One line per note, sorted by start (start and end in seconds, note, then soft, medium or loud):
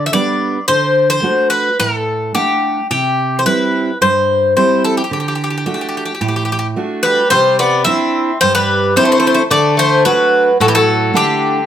0.00 0.11 D3 medium
0.06 0.13 E5 medium
0.13 0.57 G3 soft
0.13 0.58 B3 soft
0.13 0.58 D4 medium
0.13 0.65 D5 medium
0.68 1.22 D3 medium
0.68 1.09 C5 loud
1.10 1.49 C5 medium
1.23 1.67 A3 soft
1.23 1.68 D4 soft
1.23 1.68 F#4 medium
1.50 1.77 B4 medium
1.79 2.33 A2 medium
1.79 2.34 A4 medium
2.35 2.79 A3 soft
2.35 2.79 D4 soft
2.35 2.86 G4 medium
2.35 2.79 F#5 medium
2.91 3.44 C3 medium
2.91 3.40 G4 medium
3.39 3.46 C5 medium
3.45 3.90 G3 soft
3.45 3.90 C4 soft
3.45 3.90 E4 soft
3.45 3.97 B4 medium
4.01 4.55 G2 medium
4.01 4.53 C5 medium
4.56 5.00 G3 soft
4.56 5.01 C4 soft
4.56 5.01 E4 medium
4.56 4.82 C5 medium
4.84 4.97 A4 medium
4.97 5.03 G4 medium
5.04 5.12 G4 soft
5.11 5.65 D3 medium
5.11 5.19 G4 medium
5.20 5.27 G4 soft
5.28 5.34 G4 soft
5.35 5.43 G4 soft
5.44 5.49 G4 medium
5.50 5.56 G4 soft
5.58 5.65 G4 soft
5.66 6.10 A3 soft
5.66 6.11 D4 soft
5.66 6.11 F#4 soft
5.66 5.73 G4 soft
5.74 5.80 G4 soft
5.81 5.87 G4 soft
5.89 5.96 G4 soft
5.97 6.04 G4 soft
6.05 6.13 G4 soft
6.15 6.20 G4 soft
6.21 6.74 A2 medium
6.21 6.27 G4 soft
6.28 6.35 G4 soft
6.36 6.43 G4 soft
6.45 6.51 G4 soft
6.52 6.58 G4 medium
6.59 6.66 G4 soft
6.76 7.20 A3 soft
6.76 7.20 D4 soft
6.76 7.21 F#4 soft
7.03 7.30 G3 medium
7.03 7.29 B4 medium
7.30 7.85 C3 medium
7.30 7.57 G3 medium
7.30 7.56 C5 loud
7.59 7.85 B3 medium
7.59 7.84 D5 medium
7.84 8.30 C4 soft
7.84 8.37 C4 medium
7.84 8.30 D4 soft
7.84 8.31 E4 medium
7.84 8.36 E5 loud
8.41 8.95 G2 medium
8.41 8.54 G3 medium
8.41 8.54 C5 loud
8.55 8.93 G3 medium
8.55 8.96 B4 medium
8.96 9.03 G3 medium
8.96 9.40 C4 soft
8.96 9.40 D4 soft
8.96 9.41 E4 medium
8.96 9.03 C5 medium
9.03 9.10 A3 medium
9.03 9.11 C5 medium
9.11 9.17 A3 medium
9.11 9.18 C5 medium
9.18 9.25 A3 medium
9.18 9.26 C5 medium
9.26 9.33 A3 medium
9.26 9.33 C5 medium
9.34 9.42 A3 medium
9.34 9.41 C5 medium
9.51 10.04 D3 medium
9.51 9.76 A3 medium
9.51 9.76 D5 medium
9.77 10.03 A3 medium
9.77 10.05 C5 medium
10.05 10.57 F#3 medium
10.05 10.49 A3 soft
10.05 10.49 D4 soft
10.05 10.50 F#4 medium
10.05 10.56 B4 medium
10.60 11.13 A2 medium
10.60 10.67 F#3 medium
10.60 10.68 A4 medium
10.68 10.74 E3 medium
10.68 10.74 G4 medium
10.75 11.12 F#3 medium
10.75 11.16 A4 medium
11.14 11.66 D3 medium
11.14 11.58 A3 soft
11.14 11.58 D4 soft
11.14 11.66 G4 medium
11.14 11.58 F#5 soft